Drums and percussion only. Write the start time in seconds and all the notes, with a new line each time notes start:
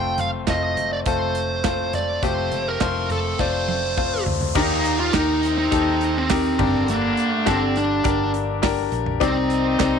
0.18 closed hi-hat, floor tom
0.47 kick, snare, clap, closed hi-hat
0.77 closed hi-hat, floor tom
1.06 kick, closed hi-hat
1.35 closed hi-hat
1.64 kick, snare, clap, closed hi-hat
1.93 closed hi-hat, floor tom
2.23 kick, closed hi-hat
2.52 closed hi-hat, floor tom
2.81 kick, snare, clap, closed hi-hat
3.10 closed hi-hat, floor tom
3.39 kick, snare
3.68 high tom
3.98 kick
4.26 floor tom
4.41 floor tom
4.55 kick, crash
4.84 hi-hat pedal, open hi-hat
5.14 kick, snare, clap, hi-hat pedal, open hi-hat
5.43 hi-hat pedal, open hi-hat
5.72 kick, hi-hat pedal, open hi-hat
6.01 hi-hat pedal, open hi-hat
6.30 kick, snare, clap, hi-hat pedal, open hi-hat
6.59 kick, floor tom, crash
6.74 floor tom
6.88 hi-hat pedal, open hi-hat
7.17 hi-hat pedal, open hi-hat
7.47 kick, snare, clap, hi-hat pedal, open hi-hat
7.76 hi-hat pedal, open hi-hat
8.04 kick, hi-hat pedal, open hi-hat
8.34 hi-hat pedal, open hi-hat
8.63 kick, snare, clap, hi-hat pedal, open hi-hat
8.92 hi-hat pedal, open hi-hat
9.06 floor tom
9.21 kick, hi-hat pedal, open hi-hat
9.50 hi-hat pedal, open hi-hat
9.80 kick, snare, clap, hi-hat pedal, open hi-hat